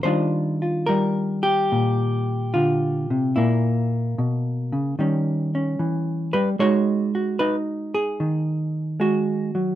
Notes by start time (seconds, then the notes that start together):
0.03 D#3 G3 D4 F4 C5
0.62 F4
0.86 G3 A#4
1.43 G4
1.72 A#2
2.54 D3 F4
3.10 C3
3.36 A#2 A#3 E4
4.18 B2
4.72 C#3
4.99 D#3 G3 C#4
5.55 C#4
5.79 E3
6.33 G3 B4
6.59 G#3 D#4 F#4 C#5
7.15 F#4
7.39 D#4 B4
7.94 G#4
8.20 D#3
9.00 G#3 F#4
9.55 F#3